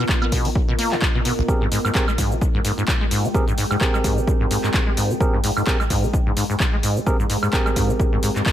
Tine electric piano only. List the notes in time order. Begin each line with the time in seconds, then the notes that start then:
1.48 C4 G4 G#4 A#4
1.95 C4 G4 G#4 A#4
3.34 C4 G4 G#4 A#4
3.81 C4 G4 G#4 A#4
5.20 C4 G4 G#4 A#4
5.67 C4 G4 G#4 A#4
7.07 C4 G4 G#4 A#4
7.53 C4 G4 G#4 A#4